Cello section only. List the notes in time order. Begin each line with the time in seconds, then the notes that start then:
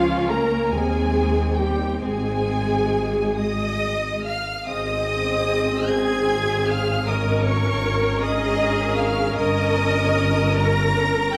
Already playing: F3
0.30 A#3
0.72 G#3
1.56 G3
2.00 G#3
5.91 G#4
7.06 A#4
8.23 G#4
9.38 A#4